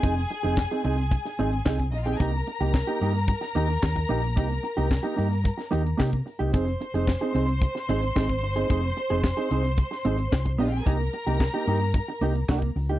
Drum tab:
HH |x-xx-xxxx-xx-xox|x-xx-xxxx-xx-xox|xxxx-xxxxxxx--ox|xxxx--xxx-xx--ox|
CP |----x-------x---|----x-------x---|----x-------x---|----x-------x---|
SD |----o----o--o---|----o----o--o---|----o----o--o---|----o----o--o---|
BD |o---o---o---oo--|o---o---o---oo--|o---o---o---oo--|o---o---o---oo--|

HH |xxxx-xxxx-xx-xox|xxxx-xxxx-xx--ox|
CP |----x-------x---|----x-------x---|
SD |----o----o--o---|----o-------o---|
BD |o---o---o---oo--|o---o---o---oo--|